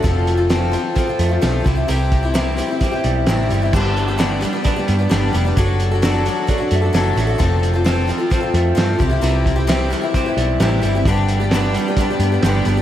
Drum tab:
CC |--------|--------|x-------|--------|
HH |xxxxxxxx|xxxxxxxx|-xxxxxxx|xxxxxxxx|
SD |--o---o-|--o---o-|--o---o-|--o---o-|
BD |o---o--o|-o--o---|o---o---|o---o---|

CC |--------|--------|--------|
HH |xxxxxxxx|xxxxxxxx|xxxxxxxx|
SD |--o---o-|--o---o-|--o---o-|
BD |o---o--o|-o--o---|o---o---|